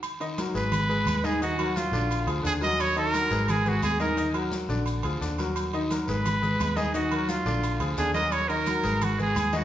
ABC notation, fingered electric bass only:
X:1
M:4/4
L:1/8
Q:1/4=174
K:Ebm
V:1 name="Fingered electric bass" clef=bass
z3 A,,,3 E,,2- | E,,3 B,,,2 =D,, E,,2- | E,,3 A,,,3 E,,2- | E,,3 B,,,2 =D,, E,,2- |
E,,3 A,,,3 E,,2- | E,,3 B,,,2 =D,, E,,2- | E,,3 A,,,3 E,,2 |]